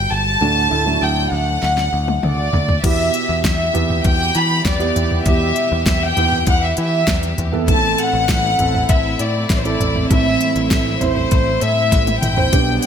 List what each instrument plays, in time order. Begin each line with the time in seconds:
Already playing: grand piano G3 E4 F#4, violin section G5
0.11 picked electric bass G1, violin section A5
0.41 picked electric bass D2, grand piano A2 A3 D4 F#4
0.70 picked electric bass D2, grand piano A3 D4 E4
0.85 grand piano F#3 A3 D4
1.02 picked electric bass D2, violin section G5
1.32 picked electric bass D2, violin section F#5
1.63 picked electric bass D2, snare
1.78 snare
1.93 picked electric bass D2
2.08 high tom
2.23 picked electric bass D2, violin section D5, mid tom
2.53 picked electric bass D2, floor tom
2.69 floor tom
2.83 picked electric bass E2, grand piano B2 B3 E4 G4, string section E3 B3 G4, violin section E5, kick, closed hi-hat, crash
3.14 closed hi-hat
3.29 picked electric bass E2
3.44 picked electric bass E2, violin section E5, kick, snare, closed hi-hat
3.73 picked electric bass E2, grand piano B3 E4 G4, closed hi-hat, floor tom
3.90 floor tom
4.04 picked electric bass E2, violin section G5, kick, closed hi-hat
4.35 picked electric bass E3, violin section B5, closed hi-hat
4.65 picked electric bass E2, violin section D5, kick, snare, closed hi-hat
4.79 grand piano B3 E4 G4, closed hi-hat
4.96 picked electric bass E2, closed hi-hat, floor tom
5.11 floor tom
5.26 picked electric bass E2, grand piano B2 B3 E4 G4, violin section E5, kick, closed hi-hat
5.56 closed hi-hat
5.72 picked electric bass E2
5.86 picked electric bass E2, violin section E5, kick, snare, closed hi-hat
6.03 violin section G5
6.16 picked electric bass E2, grand piano B3 E4 G4, closed hi-hat, floor tom
6.32 floor tom
6.47 picked electric bass E2, violin section F#5, kick, closed hi-hat
6.64 violin section E5
6.77 picked electric bass E3, violin section E5, closed hi-hat
7.07 picked electric bass E2, kick, snare, closed hi-hat
7.23 closed hi-hat
7.38 picked electric bass E2, closed hi-hat, floor tom
7.52 grand piano B3 E4 A4, floor tom
7.67 picked electric bass A1, grand piano A2 E3 B3 E4 A4, string section A3 C4 E4, violin section A5, kick, closed hi-hat
7.74 grand piano C4
7.98 violin section F#5, closed hi-hat
8.13 picked electric bass A1
8.29 picked electric bass A1, kick, snare, closed hi-hat
8.59 picked electric bass A1, grand piano C4 E4 A4, closed hi-hat, floor tom
8.74 floor tom
8.89 picked electric bass A1, violin section E5, kick, closed hi-hat
9.19 picked electric bass A2, violin section D5, closed hi-hat
9.50 picked electric bass A1, violin section D5, kick, snare, closed hi-hat
9.59 violin section C5
9.64 grand piano C4 E4 A4, violin section D5, closed hi-hat
9.80 picked electric bass A1, closed hi-hat, floor tom
9.96 floor tom
10.10 picked electric bass A1, grand piano A2 E3 C4 E4 A4, violin section E5, kick, closed hi-hat
10.41 closed hi-hat
10.56 picked electric bass A1, closed hi-hat
10.71 picked electric bass A1, violin section E5, kick, snare, closed hi-hat
11.01 picked electric bass A1, grand piano C4 E4 C5, violin section C5, closed hi-hat, floor tom
11.16 floor tom
11.31 picked electric bass A1, kick, closed hi-hat
11.61 picked electric bass A2, violin section E5, closed hi-hat
11.92 picked electric bass A1, kick, snare, closed hi-hat
12.07 closed hi-hat, high tom
12.22 picked electric bass A1, violin section G5, closed hi-hat, mid tom
12.37 grand piano C4 E4 C5, floor tom
12.52 picked electric bass B1, grand piano B2 B3 D4 G4 B4, string section G3 B3 D4, kick, closed hi-hat
12.82 violin section G5, closed hi-hat